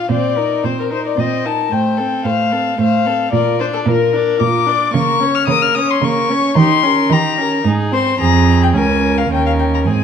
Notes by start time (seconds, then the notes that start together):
Already playing: F5
0.10 A#2 C4 C5 D5
0.36 D#4 A#4
0.64 A#2 C4 C5
0.79 A#4
0.90 D#4 A#4 C5
1.07 D5
1.17 A#2 C4 C5 D#5
1.45 D#4 A#4 A5
1.71 A2 A3 C5 G5
1.97 C4 A4
2.25 A2 A3 C5 F5
2.52 C4 A4
2.79 A2 A3 C5 F5
3.06 C4 A4
3.32 A#2 F4 A#4 D5
3.59 D4 C5 D5
3.73 A4
3.86 A#2 F4 A#4
4.13 D4 D5
4.40 A#2 F4 A#4 D6
4.66 D4 D5
4.93 C#3 A#3 A#4 C#6
5.20 C#4 C#5
5.35 F6
5.48 C#3 A#3 A#4 D#6
5.62 F6
5.75 C#4 C#5 D#6
5.90 C6
6.02 C#3 A#3 A#4 C#6
6.30 C#4 C#5
6.56 D#3 D#4 G4 C6
6.83 C#4 A#4
7.10 D#3 D#4 G4 A#5
7.38 C#4 A#4
7.64 G#2 D#4 G#4
7.92 C4 C5 C6
8.20 F2 C4 G#4 A#5
8.63 G5
8.74 C#2 C#4 A#4 G#5
9.18 F5
9.29 D#2 C#4 A#4 G5
9.46 F5
9.59 G5
9.74 A#5
9.86 G#2 C4 G#4 G#5